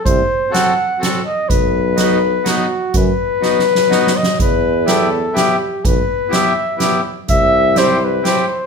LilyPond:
<<
  \new Staff \with { instrumentName = "Flugelhorn" } { \time 3/4 \key e \minor \tempo 4 = 125 c''4 fis''4 r8 dis''8 | b'4 b'4 fis'4 | b'2~ b'8 dis''8 | b'4 a'4 g'4 |
b'4 e''4 r4 | e''4 c''8 b'8 c''4 | }
  \new Staff \with { instrumentName = "Accordion" } { \time 3/4 \key e \minor r4 <c' fis' a'>8 r8 <c' fis' a'>8 r8 | r4 <b dis' fis'>8 r8 <b dis' fis'>8 r8 | r4 <b dis' fis'>8 r8 <b dis' fis'>8 r8 | r4 <b e' g'>8 r8 <b e' g'>8 r8 |
r4 <b e' g'>8 r8 <b e' g'>8 r8 | r4 <c' e' g'>8 r8 <c' e' g'>8 r8 | }
  \new Staff \with { instrumentName = "Tuba" } { \clef bass \time 3/4 \key e \minor c,8 r2 r8 | b,,2. | fis,8 r2 r8 | e,2. |
b,,8 r2 r8 | c,2. | }
  \new DrumStaff \with { instrumentName = "Drums" } \drummode { \time 3/4 <hh bd>4 <hh sn>4 <hh sn>4 | <hh bd>4 <hh sn>4 <hh sn>4 | <hh bd>4 \tuplet 3/2 { sn8 sn8 sn8 sn8 sn8 sn8 } | <hh bd>4 <hh sn>4 <hh sn>4 |
<hh bd>4 <hh sn>4 <hh sn>4 | <hh bd>4 <hh sn>4 <hh sn>4 | }
>>